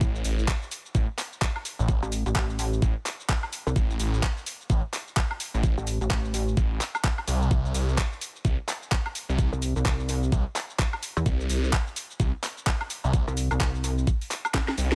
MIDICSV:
0, 0, Header, 1, 4, 480
1, 0, Start_track
1, 0, Key_signature, 0, "minor"
1, 0, Tempo, 468750
1, 11, Time_signature, 4, 2, 24, 8
1, 15309, End_track
2, 0, Start_track
2, 0, Title_t, "Detuned saw bass"
2, 0, Program_c, 0, 39
2, 11, Note_on_c, 0, 33, 94
2, 235, Note_off_c, 0, 33, 0
2, 251, Note_on_c, 0, 33, 90
2, 476, Note_off_c, 0, 33, 0
2, 971, Note_on_c, 0, 33, 101
2, 1091, Note_off_c, 0, 33, 0
2, 1834, Note_on_c, 0, 33, 94
2, 2051, Note_off_c, 0, 33, 0
2, 2890, Note_on_c, 0, 33, 96
2, 3011, Note_off_c, 0, 33, 0
2, 3850, Note_on_c, 0, 33, 99
2, 4075, Note_off_c, 0, 33, 0
2, 4091, Note_on_c, 0, 33, 96
2, 4315, Note_off_c, 0, 33, 0
2, 4811, Note_on_c, 0, 33, 94
2, 4931, Note_off_c, 0, 33, 0
2, 5675, Note_on_c, 0, 33, 100
2, 5892, Note_off_c, 0, 33, 0
2, 6729, Note_on_c, 0, 33, 93
2, 6955, Note_off_c, 0, 33, 0
2, 7449, Note_on_c, 0, 36, 96
2, 7675, Note_off_c, 0, 36, 0
2, 7690, Note_on_c, 0, 36, 93
2, 7915, Note_off_c, 0, 36, 0
2, 7930, Note_on_c, 0, 36, 99
2, 8155, Note_off_c, 0, 36, 0
2, 8650, Note_on_c, 0, 36, 95
2, 8771, Note_off_c, 0, 36, 0
2, 9513, Note_on_c, 0, 36, 102
2, 9731, Note_off_c, 0, 36, 0
2, 10571, Note_on_c, 0, 36, 101
2, 10691, Note_off_c, 0, 36, 0
2, 11530, Note_on_c, 0, 36, 94
2, 11755, Note_off_c, 0, 36, 0
2, 11769, Note_on_c, 0, 36, 96
2, 11994, Note_off_c, 0, 36, 0
2, 12490, Note_on_c, 0, 36, 98
2, 12611, Note_off_c, 0, 36, 0
2, 13353, Note_on_c, 0, 36, 99
2, 13571, Note_off_c, 0, 36, 0
2, 15131, Note_on_c, 0, 36, 97
2, 15309, Note_off_c, 0, 36, 0
2, 15309, End_track
3, 0, Start_track
3, 0, Title_t, "Wobble bass"
3, 0, Program_c, 1, 39
3, 2074, Note_on_c, 1, 33, 99
3, 2291, Note_off_c, 1, 33, 0
3, 2314, Note_on_c, 1, 33, 101
3, 2395, Note_off_c, 1, 33, 0
3, 2410, Note_on_c, 1, 33, 102
3, 2875, Note_off_c, 1, 33, 0
3, 3755, Note_on_c, 1, 36, 98
3, 3836, Note_off_c, 1, 36, 0
3, 5915, Note_on_c, 1, 33, 97
3, 6132, Note_off_c, 1, 33, 0
3, 6155, Note_on_c, 1, 33, 101
3, 6236, Note_off_c, 1, 33, 0
3, 6250, Note_on_c, 1, 33, 101
3, 6715, Note_off_c, 1, 33, 0
3, 9754, Note_on_c, 1, 36, 94
3, 9971, Note_off_c, 1, 36, 0
3, 9995, Note_on_c, 1, 36, 102
3, 10076, Note_off_c, 1, 36, 0
3, 10091, Note_on_c, 1, 36, 106
3, 10556, Note_off_c, 1, 36, 0
3, 11436, Note_on_c, 1, 40, 102
3, 11516, Note_off_c, 1, 40, 0
3, 13594, Note_on_c, 1, 36, 93
3, 13812, Note_off_c, 1, 36, 0
3, 13834, Note_on_c, 1, 36, 103
3, 13915, Note_off_c, 1, 36, 0
3, 13930, Note_on_c, 1, 36, 99
3, 14395, Note_off_c, 1, 36, 0
3, 15309, End_track
4, 0, Start_track
4, 0, Title_t, "Drums"
4, 11, Note_on_c, 9, 36, 123
4, 15, Note_on_c, 9, 82, 47
4, 113, Note_off_c, 9, 36, 0
4, 117, Note_off_c, 9, 82, 0
4, 158, Note_on_c, 9, 82, 34
4, 251, Note_on_c, 9, 46, 113
4, 254, Note_off_c, 9, 82, 0
4, 254, Note_on_c, 9, 82, 80
4, 353, Note_off_c, 9, 46, 0
4, 356, Note_off_c, 9, 82, 0
4, 398, Note_on_c, 9, 82, 37
4, 490, Note_on_c, 9, 36, 117
4, 494, Note_off_c, 9, 82, 0
4, 494, Note_on_c, 9, 82, 49
4, 495, Note_on_c, 9, 39, 126
4, 593, Note_off_c, 9, 36, 0
4, 597, Note_off_c, 9, 39, 0
4, 597, Note_off_c, 9, 82, 0
4, 639, Note_on_c, 9, 82, 31
4, 732, Note_on_c, 9, 46, 104
4, 735, Note_off_c, 9, 82, 0
4, 735, Note_on_c, 9, 82, 81
4, 834, Note_off_c, 9, 46, 0
4, 837, Note_off_c, 9, 82, 0
4, 878, Note_on_c, 9, 82, 37
4, 971, Note_on_c, 9, 36, 123
4, 975, Note_off_c, 9, 82, 0
4, 975, Note_on_c, 9, 82, 47
4, 1073, Note_off_c, 9, 36, 0
4, 1077, Note_off_c, 9, 82, 0
4, 1211, Note_on_c, 9, 46, 108
4, 1215, Note_on_c, 9, 39, 64
4, 1215, Note_on_c, 9, 82, 85
4, 1314, Note_off_c, 9, 46, 0
4, 1317, Note_off_c, 9, 82, 0
4, 1318, Note_off_c, 9, 39, 0
4, 1359, Note_on_c, 9, 82, 35
4, 1450, Note_on_c, 9, 36, 117
4, 1454, Note_off_c, 9, 82, 0
4, 1454, Note_on_c, 9, 39, 122
4, 1454, Note_on_c, 9, 82, 46
4, 1553, Note_off_c, 9, 36, 0
4, 1556, Note_off_c, 9, 82, 0
4, 1557, Note_off_c, 9, 39, 0
4, 1595, Note_on_c, 9, 76, 64
4, 1691, Note_on_c, 9, 46, 102
4, 1694, Note_on_c, 9, 82, 80
4, 1697, Note_off_c, 9, 76, 0
4, 1793, Note_off_c, 9, 46, 0
4, 1797, Note_off_c, 9, 82, 0
4, 1838, Note_on_c, 9, 82, 36
4, 1930, Note_on_c, 9, 36, 124
4, 1934, Note_off_c, 9, 82, 0
4, 1934, Note_on_c, 9, 82, 44
4, 2032, Note_off_c, 9, 36, 0
4, 2037, Note_off_c, 9, 82, 0
4, 2078, Note_on_c, 9, 82, 32
4, 2171, Note_on_c, 9, 46, 114
4, 2174, Note_off_c, 9, 82, 0
4, 2174, Note_on_c, 9, 82, 81
4, 2273, Note_off_c, 9, 46, 0
4, 2277, Note_off_c, 9, 82, 0
4, 2317, Note_on_c, 9, 82, 35
4, 2410, Note_on_c, 9, 36, 113
4, 2414, Note_off_c, 9, 82, 0
4, 2414, Note_on_c, 9, 39, 126
4, 2414, Note_on_c, 9, 82, 44
4, 2513, Note_off_c, 9, 36, 0
4, 2516, Note_off_c, 9, 82, 0
4, 2517, Note_off_c, 9, 39, 0
4, 2558, Note_on_c, 9, 82, 29
4, 2651, Note_on_c, 9, 46, 110
4, 2654, Note_off_c, 9, 82, 0
4, 2654, Note_on_c, 9, 82, 79
4, 2753, Note_off_c, 9, 46, 0
4, 2757, Note_off_c, 9, 82, 0
4, 2797, Note_on_c, 9, 82, 37
4, 2890, Note_on_c, 9, 36, 123
4, 2895, Note_off_c, 9, 82, 0
4, 2895, Note_on_c, 9, 82, 46
4, 2993, Note_off_c, 9, 36, 0
4, 2997, Note_off_c, 9, 82, 0
4, 3131, Note_on_c, 9, 46, 112
4, 3134, Note_on_c, 9, 82, 80
4, 3135, Note_on_c, 9, 39, 68
4, 3233, Note_off_c, 9, 46, 0
4, 3237, Note_off_c, 9, 39, 0
4, 3237, Note_off_c, 9, 82, 0
4, 3278, Note_on_c, 9, 82, 34
4, 3370, Note_on_c, 9, 36, 124
4, 3375, Note_off_c, 9, 82, 0
4, 3375, Note_on_c, 9, 39, 127
4, 3375, Note_on_c, 9, 82, 44
4, 3473, Note_off_c, 9, 36, 0
4, 3477, Note_off_c, 9, 39, 0
4, 3477, Note_off_c, 9, 82, 0
4, 3514, Note_on_c, 9, 76, 62
4, 3611, Note_on_c, 9, 46, 108
4, 3614, Note_on_c, 9, 82, 79
4, 3616, Note_off_c, 9, 76, 0
4, 3713, Note_off_c, 9, 46, 0
4, 3717, Note_off_c, 9, 82, 0
4, 3758, Note_on_c, 9, 82, 34
4, 3850, Note_on_c, 9, 36, 123
4, 3854, Note_off_c, 9, 82, 0
4, 3854, Note_on_c, 9, 82, 44
4, 3953, Note_off_c, 9, 36, 0
4, 3956, Note_off_c, 9, 82, 0
4, 3999, Note_on_c, 9, 82, 32
4, 4091, Note_on_c, 9, 46, 121
4, 4095, Note_off_c, 9, 82, 0
4, 4095, Note_on_c, 9, 82, 80
4, 4194, Note_off_c, 9, 46, 0
4, 4197, Note_off_c, 9, 82, 0
4, 4239, Note_on_c, 9, 82, 34
4, 4330, Note_on_c, 9, 36, 121
4, 4335, Note_off_c, 9, 82, 0
4, 4335, Note_on_c, 9, 39, 124
4, 4335, Note_on_c, 9, 82, 45
4, 4433, Note_off_c, 9, 36, 0
4, 4438, Note_off_c, 9, 39, 0
4, 4438, Note_off_c, 9, 82, 0
4, 4479, Note_on_c, 9, 82, 29
4, 4571, Note_on_c, 9, 46, 112
4, 4575, Note_off_c, 9, 82, 0
4, 4575, Note_on_c, 9, 82, 75
4, 4674, Note_off_c, 9, 46, 0
4, 4677, Note_off_c, 9, 82, 0
4, 4719, Note_on_c, 9, 82, 33
4, 4810, Note_on_c, 9, 36, 127
4, 4815, Note_off_c, 9, 82, 0
4, 4815, Note_on_c, 9, 82, 46
4, 4913, Note_off_c, 9, 36, 0
4, 4918, Note_off_c, 9, 82, 0
4, 5051, Note_on_c, 9, 46, 111
4, 5055, Note_on_c, 9, 39, 66
4, 5055, Note_on_c, 9, 82, 75
4, 5154, Note_off_c, 9, 46, 0
4, 5157, Note_off_c, 9, 82, 0
4, 5158, Note_off_c, 9, 39, 0
4, 5199, Note_on_c, 9, 82, 32
4, 5290, Note_on_c, 9, 36, 124
4, 5294, Note_off_c, 9, 82, 0
4, 5294, Note_on_c, 9, 39, 120
4, 5294, Note_on_c, 9, 82, 42
4, 5393, Note_off_c, 9, 36, 0
4, 5397, Note_off_c, 9, 39, 0
4, 5397, Note_off_c, 9, 82, 0
4, 5434, Note_on_c, 9, 76, 63
4, 5530, Note_on_c, 9, 46, 116
4, 5533, Note_on_c, 9, 82, 78
4, 5537, Note_off_c, 9, 76, 0
4, 5633, Note_off_c, 9, 46, 0
4, 5636, Note_off_c, 9, 82, 0
4, 5677, Note_on_c, 9, 82, 33
4, 5770, Note_on_c, 9, 36, 124
4, 5774, Note_off_c, 9, 82, 0
4, 5774, Note_on_c, 9, 82, 43
4, 5872, Note_off_c, 9, 36, 0
4, 5876, Note_off_c, 9, 82, 0
4, 5918, Note_on_c, 9, 82, 29
4, 6010, Note_on_c, 9, 46, 114
4, 6014, Note_off_c, 9, 82, 0
4, 6014, Note_on_c, 9, 82, 80
4, 6113, Note_off_c, 9, 46, 0
4, 6116, Note_off_c, 9, 82, 0
4, 6158, Note_on_c, 9, 82, 33
4, 6250, Note_on_c, 9, 36, 118
4, 6255, Note_off_c, 9, 82, 0
4, 6255, Note_on_c, 9, 39, 117
4, 6255, Note_on_c, 9, 82, 45
4, 6352, Note_off_c, 9, 36, 0
4, 6357, Note_off_c, 9, 82, 0
4, 6358, Note_off_c, 9, 39, 0
4, 6399, Note_on_c, 9, 82, 28
4, 6491, Note_on_c, 9, 46, 107
4, 6494, Note_off_c, 9, 82, 0
4, 6494, Note_on_c, 9, 82, 74
4, 6593, Note_off_c, 9, 46, 0
4, 6597, Note_off_c, 9, 82, 0
4, 6638, Note_on_c, 9, 82, 34
4, 6730, Note_on_c, 9, 36, 126
4, 6734, Note_off_c, 9, 82, 0
4, 6734, Note_on_c, 9, 82, 45
4, 6832, Note_off_c, 9, 36, 0
4, 6837, Note_off_c, 9, 82, 0
4, 6971, Note_on_c, 9, 46, 109
4, 6975, Note_on_c, 9, 39, 62
4, 6975, Note_on_c, 9, 82, 73
4, 7074, Note_off_c, 9, 46, 0
4, 7077, Note_off_c, 9, 39, 0
4, 7077, Note_off_c, 9, 82, 0
4, 7115, Note_on_c, 9, 76, 85
4, 7118, Note_on_c, 9, 82, 34
4, 7210, Note_on_c, 9, 36, 123
4, 7215, Note_off_c, 9, 82, 0
4, 7215, Note_on_c, 9, 39, 115
4, 7215, Note_on_c, 9, 82, 41
4, 7218, Note_off_c, 9, 76, 0
4, 7312, Note_off_c, 9, 36, 0
4, 7317, Note_off_c, 9, 39, 0
4, 7317, Note_off_c, 9, 82, 0
4, 7355, Note_on_c, 9, 76, 63
4, 7450, Note_on_c, 9, 46, 109
4, 7454, Note_on_c, 9, 82, 72
4, 7457, Note_off_c, 9, 76, 0
4, 7553, Note_off_c, 9, 46, 0
4, 7556, Note_off_c, 9, 82, 0
4, 7598, Note_on_c, 9, 82, 32
4, 7690, Note_on_c, 9, 36, 123
4, 7694, Note_off_c, 9, 82, 0
4, 7694, Note_on_c, 9, 82, 42
4, 7793, Note_off_c, 9, 36, 0
4, 7797, Note_off_c, 9, 82, 0
4, 7837, Note_on_c, 9, 82, 30
4, 7930, Note_on_c, 9, 46, 109
4, 7934, Note_off_c, 9, 82, 0
4, 7934, Note_on_c, 9, 82, 79
4, 8033, Note_off_c, 9, 46, 0
4, 8036, Note_off_c, 9, 82, 0
4, 8078, Note_on_c, 9, 82, 33
4, 8170, Note_on_c, 9, 36, 114
4, 8175, Note_off_c, 9, 82, 0
4, 8175, Note_on_c, 9, 39, 120
4, 8175, Note_on_c, 9, 82, 43
4, 8273, Note_off_c, 9, 36, 0
4, 8277, Note_off_c, 9, 39, 0
4, 8277, Note_off_c, 9, 82, 0
4, 8318, Note_on_c, 9, 82, 28
4, 8411, Note_on_c, 9, 46, 108
4, 8415, Note_off_c, 9, 82, 0
4, 8415, Note_on_c, 9, 82, 78
4, 8514, Note_off_c, 9, 46, 0
4, 8517, Note_off_c, 9, 82, 0
4, 8559, Note_on_c, 9, 82, 32
4, 8650, Note_on_c, 9, 36, 122
4, 8654, Note_off_c, 9, 82, 0
4, 8654, Note_on_c, 9, 82, 42
4, 8753, Note_off_c, 9, 36, 0
4, 8757, Note_off_c, 9, 82, 0
4, 8892, Note_on_c, 9, 46, 108
4, 8895, Note_on_c, 9, 39, 59
4, 8895, Note_on_c, 9, 82, 79
4, 8994, Note_off_c, 9, 46, 0
4, 8997, Note_off_c, 9, 82, 0
4, 8998, Note_off_c, 9, 39, 0
4, 9038, Note_on_c, 9, 82, 32
4, 9130, Note_on_c, 9, 36, 121
4, 9134, Note_off_c, 9, 82, 0
4, 9134, Note_on_c, 9, 82, 42
4, 9135, Note_on_c, 9, 39, 109
4, 9233, Note_off_c, 9, 36, 0
4, 9237, Note_off_c, 9, 39, 0
4, 9237, Note_off_c, 9, 82, 0
4, 9275, Note_on_c, 9, 76, 69
4, 9372, Note_on_c, 9, 46, 105
4, 9375, Note_on_c, 9, 82, 75
4, 9377, Note_off_c, 9, 76, 0
4, 9474, Note_off_c, 9, 46, 0
4, 9477, Note_off_c, 9, 82, 0
4, 9519, Note_on_c, 9, 82, 32
4, 9611, Note_on_c, 9, 36, 114
4, 9614, Note_off_c, 9, 82, 0
4, 9614, Note_on_c, 9, 82, 46
4, 9713, Note_off_c, 9, 36, 0
4, 9717, Note_off_c, 9, 82, 0
4, 9759, Note_on_c, 9, 82, 31
4, 9852, Note_on_c, 9, 46, 108
4, 9855, Note_off_c, 9, 82, 0
4, 9855, Note_on_c, 9, 82, 80
4, 9954, Note_off_c, 9, 46, 0
4, 9957, Note_off_c, 9, 82, 0
4, 9998, Note_on_c, 9, 82, 35
4, 10091, Note_on_c, 9, 36, 111
4, 10094, Note_off_c, 9, 82, 0
4, 10094, Note_on_c, 9, 39, 116
4, 10094, Note_on_c, 9, 82, 46
4, 10193, Note_off_c, 9, 36, 0
4, 10196, Note_off_c, 9, 39, 0
4, 10196, Note_off_c, 9, 82, 0
4, 10238, Note_on_c, 9, 82, 30
4, 10330, Note_on_c, 9, 46, 102
4, 10333, Note_off_c, 9, 82, 0
4, 10333, Note_on_c, 9, 82, 82
4, 10432, Note_off_c, 9, 46, 0
4, 10436, Note_off_c, 9, 82, 0
4, 10478, Note_on_c, 9, 82, 35
4, 10571, Note_on_c, 9, 36, 118
4, 10574, Note_off_c, 9, 82, 0
4, 10574, Note_on_c, 9, 82, 44
4, 10673, Note_off_c, 9, 36, 0
4, 10676, Note_off_c, 9, 82, 0
4, 10810, Note_on_c, 9, 46, 102
4, 10813, Note_on_c, 9, 82, 79
4, 10814, Note_on_c, 9, 39, 59
4, 10912, Note_off_c, 9, 46, 0
4, 10916, Note_off_c, 9, 39, 0
4, 10916, Note_off_c, 9, 82, 0
4, 10957, Note_on_c, 9, 82, 34
4, 11050, Note_on_c, 9, 36, 114
4, 11053, Note_off_c, 9, 82, 0
4, 11053, Note_on_c, 9, 82, 44
4, 11054, Note_on_c, 9, 39, 114
4, 11153, Note_off_c, 9, 36, 0
4, 11156, Note_off_c, 9, 39, 0
4, 11156, Note_off_c, 9, 82, 0
4, 11194, Note_on_c, 9, 76, 71
4, 11291, Note_on_c, 9, 46, 103
4, 11294, Note_on_c, 9, 82, 74
4, 11297, Note_off_c, 9, 76, 0
4, 11393, Note_off_c, 9, 46, 0
4, 11397, Note_off_c, 9, 82, 0
4, 11437, Note_on_c, 9, 82, 35
4, 11530, Note_on_c, 9, 36, 114
4, 11534, Note_off_c, 9, 82, 0
4, 11534, Note_on_c, 9, 82, 46
4, 11633, Note_off_c, 9, 36, 0
4, 11637, Note_off_c, 9, 82, 0
4, 11678, Note_on_c, 9, 82, 33
4, 11771, Note_on_c, 9, 46, 103
4, 11774, Note_off_c, 9, 82, 0
4, 11774, Note_on_c, 9, 82, 86
4, 11873, Note_off_c, 9, 46, 0
4, 11876, Note_off_c, 9, 82, 0
4, 11917, Note_on_c, 9, 82, 36
4, 12010, Note_on_c, 9, 36, 109
4, 12014, Note_off_c, 9, 82, 0
4, 12014, Note_on_c, 9, 39, 116
4, 12014, Note_on_c, 9, 82, 47
4, 12113, Note_off_c, 9, 36, 0
4, 12116, Note_off_c, 9, 82, 0
4, 12117, Note_off_c, 9, 39, 0
4, 12158, Note_on_c, 9, 82, 30
4, 12250, Note_on_c, 9, 46, 107
4, 12253, Note_off_c, 9, 82, 0
4, 12253, Note_on_c, 9, 82, 83
4, 12352, Note_off_c, 9, 46, 0
4, 12356, Note_off_c, 9, 82, 0
4, 12397, Note_on_c, 9, 82, 36
4, 12490, Note_on_c, 9, 36, 114
4, 12494, Note_off_c, 9, 82, 0
4, 12494, Note_on_c, 9, 82, 49
4, 12593, Note_off_c, 9, 36, 0
4, 12597, Note_off_c, 9, 82, 0
4, 12731, Note_on_c, 9, 46, 99
4, 12734, Note_on_c, 9, 39, 58
4, 12734, Note_on_c, 9, 82, 83
4, 12833, Note_off_c, 9, 46, 0
4, 12837, Note_off_c, 9, 39, 0
4, 12837, Note_off_c, 9, 82, 0
4, 12878, Note_on_c, 9, 82, 35
4, 12970, Note_on_c, 9, 36, 109
4, 12974, Note_off_c, 9, 82, 0
4, 12974, Note_on_c, 9, 82, 46
4, 12975, Note_on_c, 9, 39, 118
4, 13072, Note_off_c, 9, 36, 0
4, 13077, Note_off_c, 9, 39, 0
4, 13077, Note_off_c, 9, 82, 0
4, 13115, Note_on_c, 9, 76, 73
4, 13211, Note_on_c, 9, 46, 100
4, 13214, Note_on_c, 9, 82, 83
4, 13217, Note_off_c, 9, 76, 0
4, 13313, Note_off_c, 9, 46, 0
4, 13316, Note_off_c, 9, 82, 0
4, 13358, Note_on_c, 9, 82, 36
4, 13450, Note_on_c, 9, 36, 120
4, 13454, Note_off_c, 9, 82, 0
4, 13454, Note_on_c, 9, 82, 49
4, 13553, Note_off_c, 9, 36, 0
4, 13557, Note_off_c, 9, 82, 0
4, 13598, Note_on_c, 9, 82, 33
4, 13690, Note_on_c, 9, 46, 107
4, 13694, Note_off_c, 9, 82, 0
4, 13694, Note_on_c, 9, 82, 88
4, 13793, Note_off_c, 9, 46, 0
4, 13796, Note_off_c, 9, 82, 0
4, 13834, Note_on_c, 9, 76, 63
4, 13837, Note_on_c, 9, 82, 36
4, 13930, Note_on_c, 9, 36, 106
4, 13934, Note_off_c, 9, 82, 0
4, 13934, Note_on_c, 9, 39, 124
4, 13934, Note_on_c, 9, 82, 49
4, 13936, Note_off_c, 9, 76, 0
4, 14032, Note_off_c, 9, 36, 0
4, 14036, Note_off_c, 9, 82, 0
4, 14037, Note_off_c, 9, 39, 0
4, 14078, Note_on_c, 9, 82, 31
4, 14171, Note_on_c, 9, 46, 103
4, 14175, Note_off_c, 9, 82, 0
4, 14175, Note_on_c, 9, 82, 84
4, 14274, Note_off_c, 9, 46, 0
4, 14277, Note_off_c, 9, 82, 0
4, 14318, Note_on_c, 9, 82, 37
4, 14410, Note_on_c, 9, 36, 116
4, 14414, Note_off_c, 9, 82, 0
4, 14414, Note_on_c, 9, 82, 48
4, 14513, Note_off_c, 9, 36, 0
4, 14517, Note_off_c, 9, 82, 0
4, 14556, Note_on_c, 9, 46, 64
4, 14559, Note_on_c, 9, 82, 33
4, 14652, Note_off_c, 9, 46, 0
4, 14652, Note_on_c, 9, 46, 109
4, 14655, Note_off_c, 9, 82, 0
4, 14655, Note_on_c, 9, 39, 64
4, 14655, Note_on_c, 9, 82, 85
4, 14754, Note_off_c, 9, 46, 0
4, 14757, Note_off_c, 9, 82, 0
4, 14758, Note_off_c, 9, 39, 0
4, 14796, Note_on_c, 9, 76, 88
4, 14799, Note_on_c, 9, 82, 35
4, 14891, Note_on_c, 9, 36, 121
4, 14892, Note_on_c, 9, 38, 64
4, 14896, Note_off_c, 9, 82, 0
4, 14896, Note_on_c, 9, 39, 116
4, 14896, Note_on_c, 9, 82, 48
4, 14898, Note_off_c, 9, 76, 0
4, 14993, Note_off_c, 9, 36, 0
4, 14995, Note_off_c, 9, 38, 0
4, 14998, Note_off_c, 9, 82, 0
4, 14999, Note_off_c, 9, 39, 0
4, 15036, Note_on_c, 9, 38, 63
4, 15036, Note_on_c, 9, 76, 68
4, 15132, Note_on_c, 9, 46, 102
4, 15135, Note_on_c, 9, 82, 84
4, 15138, Note_off_c, 9, 38, 0
4, 15138, Note_off_c, 9, 76, 0
4, 15234, Note_off_c, 9, 46, 0
4, 15238, Note_off_c, 9, 82, 0
4, 15276, Note_on_c, 9, 38, 84
4, 15309, Note_off_c, 9, 38, 0
4, 15309, End_track
0, 0, End_of_file